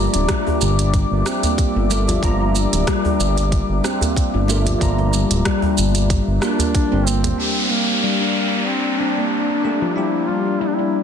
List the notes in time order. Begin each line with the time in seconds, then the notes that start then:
Already playing: G3 A#3 D4 F4 G4 A#4 D5 E5 A#5 D6
0.14 D1, closed hi-hat, shaker
0.29 G3, kick, cross-stick, closed hi-hat, shaker
0.46 D4, djembe tone, djembe bass
0.61 G1, shaker
0.79 closed hi-hat, djembe tone, shaker
0.94 kick, closed hi-hat, shaker
1.11 G1
1.26 C4, cross-stick, djembe slap, shaker
1.43 A#3, closed hi-hat, djembe bass, shaker
1.58 kick, closed hi-hat, shaker
1.76 G1 D4
1.90 G3 A3 A#3 D4 F4 A#4, shaker
2.07 F3, closed hi-hat, djembe bass, shaker
2.21 G1 G3 D4 F4 A#5, kick, closed hi-hat, shaker
2.55 G3, shaker
2.73 D1, closed hi-hat, shaker
2.87 G3, kick, cross-stick, closed hi-hat, shaker
3.05 D4, djembe tone, djembe bass
3.20 G1, shaker
3.37 closed hi-hat, djembe tone, shaker
3.52 kick, closed hi-hat, shaker
3.69 G1
3.84 C4, cross-stick, djembe tone, shaker
4.01 A#3, closed hi-hat, djembe slap, djembe bass, shaker
4.16 kick, closed hi-hat, shaker
4.34 G1 D4
4.48 G3 A3 A#3 D4 F4 A#4, djembe slap, shaker
4.66 F3, closed hi-hat, djembe bass, shaker
4.79 G1 G3 D4 F4 A#5, kick, closed hi-hat, shaker
4.98 djembe slap, djembe tone
5.13 G3, djembe tone, shaker
5.31 D1, closed hi-hat, shaker
5.45 G3, kick, cross-stick, closed hi-hat, shaker
5.62 D4, djembe tone, djembe bass
5.78 G1, shaker
5.95 closed hi-hat, djembe tone, shaker
6.10 kick, closed hi-hat, shaker
6.27 G1
6.40 G3 A#3 D4 F4 A#4, cross-stick, djembe slap, shaker
6.59 D4, closed hi-hat, djembe bass, shaker
6.75 kick, closed hi-hat, shaker
6.92 G1 C4
7.07 A#3 C4, shaker
7.24 C4, closed hi-hat, djembe bass, shaker
7.37 G3 A#3 D4 G4 D5 A#5, downlifter
7.70 G3 A#3
8.04 G3
8.21 D4
8.66 C4
8.99 C4 D4
9.18 A#3
9.50 D4
9.63 A3 A#3 D4 G4
9.82 F3
9.96 G3 D4 E4 G4
10.28 G3 F4
10.60 G3 E4
10.67 D4
10.74 E4
10.79 D4